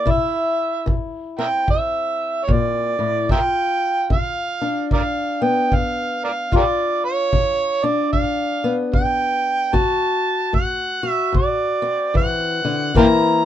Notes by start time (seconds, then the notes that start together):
Already playing: D5
0.06 C3 E4, kick
0.10 E5
0.86 E3, kick
1.39 C4 A#4 E5 G5
1.67 G2 E5, kick
2.44 A#2 C#5
2.49 D5, kick
2.99 A2
3.29 G2 F4 A#4 E5 G5, kick
4.10 D3 F5, kick
4.61 D4
4.91 G2 A#4 D5 F5, kick
5.42 B3 G5
5.72 D3 F5, kick
6.24 A#4 D5 F5
6.52 G2 F4, kick
6.56 G4 A#4 D5
7.05 C#5
7.33 D3, kick
7.84 D4 D5
8.13 G2 F5, kick
8.64 B3
8.93 D3 G5, kick
9.73 D3 F#4 A5, kick
10.53 A3 F#5, kick
11.03 F#4
11.10 E5
11.32 A2, kick
11.37 D5
11.82 C4
12.14 E3 F#5, kick
12.65 D3
12.94 C3 E3 A#3 C4 E4 F5 G5 A#5, kick